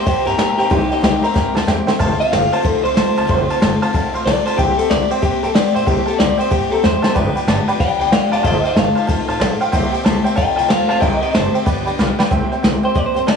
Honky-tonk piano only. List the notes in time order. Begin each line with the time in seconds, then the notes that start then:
0.06 C5 E5 G5
0.27 C5 E5 G5
0.39 C5 E5 G5
0.59 C5 E5 G5
0.71 C5 E5 G5
0.90 C5 E5 G5
1.02 C5 E5 G5
1.23 C5 E5 A#5
1.35 C5 E5 G5
1.55 C5 E5 A5
1.67 C5 E5 G5
1.87 C5 E5 G5
1.99 C5 F5 A5
2.20 C5 F5 A5
2.32 C5 F5 G5
2.52 C5 F5 A5
2.65 C5 C6
2.85 C5 F5 C6
2.97 C5 F5 A5
3.17 C5 F5 A5
3.29 C5 F5 C6
3.50 C5 F5 A5
3.62 C5 F5 A5
3.82 C5 F5 A5
3.94 C5 F5 A5
4.14 C5 F5 C6
4.27 C5 F5 A5
4.46 C5 F5 A5
4.57 C5 E5 G5
4.78 C5 E5 G5
4.90 C5 E5 G5
5.11 C5 E5 G5
5.22 C5 E5 G5
5.43 C5 E5 G5
5.55 C5 E5 G5
5.74 C5 E5 G5
5.86 C5 E5 G5
6.06 C5 E5 A5
6.18 C5 E5 G5
6.37 C5 E5 G5
6.51 C5 E5 G5
6.71 C5 E5 A#5
6.83 C5 E5 G5
7.02 C5 E5 A5
7.14 B4 D5 G5
7.35 B4 D5 G5
7.47 B4 D5 A5
7.68 B4 D5 G5
7.80 B4 D5 G5
8.00 B4 D5 G5
8.12 B4 D5 G5
8.31 B4 D5 A5
8.43 C5 F5 A5
8.64 C5 F5 G5
8.76 C5 F5 A5
8.95 C5 F5 A5
9.07 C5 F5 A5
9.28 C5 F5 A5
9.39 C5 F5 A5
9.60 C5 F5 G5
9.72 C5 E5 G5
9.92 C5 E5 G5
10.04 C5 E5 A5
10.24 C5 E5 G5
10.35 C5 F5 A5
10.56 C5 F5 A5
10.68 C5 F5 A5
10.88 C5 F5 A5
11.00 C5 E5 G5
11.21 C5 E5 G5
11.34 C5 E5 A5
11.54 C5 E5 G5
11.65 B4 D5 G5
11.85 B4 D5 G5
11.99 B4 D5 F5
12.19 B4 D5 G5
12.31 C5 E5 G5
12.52 C5 E5 G5
12.63 C5 E5 G5
12.83 C5 E5 G5
12.95 C5 E5 G5
13.15 C5 E5 G5
13.27 C5 E5 A5